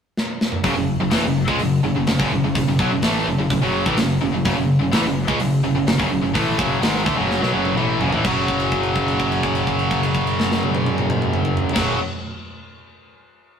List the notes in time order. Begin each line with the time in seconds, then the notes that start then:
0.17 snare
0.41 snare
0.52 mid tom
0.64 F#1 F#2 C#3, kick, open hi-hat
0.75 F#1 F#2 C#3
1.01 F#1 F#2 C#3
1.10 A1 A2 E3, snare, open hi-hat
1.23 F#1 F#2 C#3
1.48 C#2 C#3 G#3, kick
1.59 F#1 F#2 C#3, open hi-hat
1.84 F#1 F#2 C#3
1.95 F#1 F#2 C#3
2.07 F#1 F#2 C#3, snare, open hi-hat
2.19 F#1 F#2 C#3, kick
2.31 F#1 F#2 C#3
2.44 F#1 F#2 C#3
2.55 F#1 F#2 C#3, kick, open hi-hat
2.68 F#1 F#2 C#3
2.79 B1 B2 F#3, kick
2.91 F#1 F#2 C#3
3.02 A1 A2 E3 A3, snare, open hi-hat
3.26 F#1 F#2 C#3
3.39 F#1 F#2 C#3
3.50 F#1 F#2 C#3, kick, open hi-hat
3.62 F#1 F#2 C#3 F#3
3.86 A1 A2 E3, kick
3.97 F#1 F#2 C#3, snare, open hi-hat
4.21 F#1 F#2 C#3
4.32 F#1 F#2 C#3
4.45 F#1 F#2 C#3, kick, open hi-hat
4.57 F#1 F#2 C#3
4.79 F#1 F#2 C#3
4.92 A1 A2 E3, snare, open hi-hat
5.03 F#1 F#2 C#3, snare
5.27 C#2 C#3 G#3, kick
5.40 F#1 F#2 C#3, open hi-hat
5.64 F#1 F#2 C#3
5.75 F#1 F#2 C#3
5.87 F#1 F#2 C#3, snare, open hi-hat
5.98 F#1 F#2 C#3, kick
6.10 F#1 F#2 C#3
6.21 F#1 F#2 C#3
6.34 A1 A2 E3 A3, kick, open hi-hat
6.58 F#1 F#2 C#3 F#3, kick
6.81 G#1 G#2 D#3 G#3, snare, open hi-hat
7.05 D2 D3 A3, kick
7.16 F#1 F#2 C#3 F#3
7.31 snare
7.42 B1 B2 F#3, snare
7.52 F#1 F#2 C#3 F#3
7.65 high tom
7.76 A1 A2 E3 A3, mid tom
8.00 F#1 F#2 C#3, floor tom
8.11 A1 A2 E3, floor tom
8.24 F#1 F#2 C#3 F#3, kick, crash
8.48 kick, crash
8.60 crash
8.72 kick, crash
8.83 crash
8.95 kick, crash
9.08 crash
9.20 kick, crash
9.32 crash
9.43 kick, crash
9.55 crash
9.67 kick, crash
9.79 crash
9.91 kick, crash
10.03 crash
10.15 kick, crash
10.27 crash
10.40 snare
10.52 snare
10.63 high tom
10.75 high tom
10.86 high tom
10.98 mid tom
11.10 mid tom
11.22 mid tom
11.33 mid tom
11.45 mid tom
11.57 floor tom
11.69 F#2, floor tom
11.75 F#1 C#3 F#3, kick, snare, crash